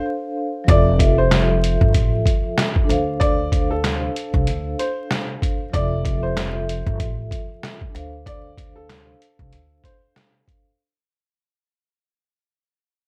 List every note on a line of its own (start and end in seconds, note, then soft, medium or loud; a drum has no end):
0.00 0.30 D4 medium
0.00 0.31 A4 medium
0.00 0.33 C5 medium
0.00 0.34 F5 medium
0.64 2.83 F3 medium
0.64 2.84 F4 medium
0.68 1.77 F1 loud
0.68 2.86 A4 medium
0.68 1.15 D5 loud
0.68 2.87 E5 medium
0.68 kick loud
0.68 closed hi-hat loud
0.99 kick medium
0.99 closed hi-hat medium
1.18 2.09 C5 medium
1.31 snare loud
1.31 clap medium
1.31 closed hi-hat medium
1.64 closed hi-hat medium
1.81 1.92 G1 medium
1.81 kick medium
1.94 2.20 A1 loud
1.94 kick medium
1.94 closed hi-hat medium
2.26 kick medium
2.26 closed hi-hat medium
2.58 snare loud
2.58 clap loud
2.58 closed hi-hat medium
2.76 kick medium
2.84 5.35 D4 medium
2.84 5.37 A4 medium
2.89 4.06 D2 loud
2.89 5.38 C5 medium
2.89 5.39 F5 medium
2.89 closed hi-hat medium
3.20 3.67 D5 loud
3.20 kick loud
3.20 closed hi-hat loud
3.52 kick medium
3.52 closed hi-hat medium
3.71 4.75 A4 medium
3.84 snare loud
3.84 clap medium
3.84 closed hi-hat medium
4.16 closed hi-hat medium
4.34 4.45 C2 medium
4.34 kick medium
4.47 4.73 D2 medium
4.47 closed hi-hat medium
4.79 5.07 C5 medium
4.79 closed hi-hat medium
5.11 snare loud
5.11 clap loud
5.11 closed hi-hat medium
5.42 kick medium
5.42 closed hi-hat medium
5.69 7.88 F3 medium
5.69 7.90 F4 medium
5.69 6.20 D5 loud
5.74 6.82 F1 loud
5.74 7.91 A4 medium
5.74 7.92 E5 medium
5.74 kick loud
5.74 closed hi-hat loud
6.05 kick medium
6.05 closed hi-hat medium
6.23 7.14 C5 medium
6.37 snare loud
6.37 clap medium
6.37 closed hi-hat medium
6.69 closed hi-hat medium
6.87 6.98 G1 loud
6.87 kick medium
7.00 7.25 A1 loud
7.00 kick medium
7.00 closed hi-hat medium
7.31 kick medium
7.31 closed hi-hat medium
7.63 snare loud
7.63 clap loud
7.63 closed hi-hat medium
7.81 kick medium
7.90 10.41 D4 medium
7.90 10.42 A4 medium
7.95 9.12 D2 loud
7.95 10.43 C5 medium
7.95 10.45 F5 medium
7.95 closed hi-hat medium
8.26 8.72 D5 medium
8.26 kick loud
8.26 closed hi-hat medium
8.57 kick medium
8.57 closed hi-hat medium
8.76 9.80 A4 medium
8.90 snare loud
8.90 clap medium
8.90 closed hi-hat medium
9.22 closed hi-hat medium
9.39 9.50 C2 medium
9.39 kick medium
9.53 9.78 D2 medium
9.53 closed hi-hat medium
9.84 10.13 C5 medium
9.84 kick medium
9.84 closed hi-hat medium
10.16 snare loud
10.16 clap loud
10.16 closed hi-hat medium
10.48 kick medium
10.48 closed hi-hat medium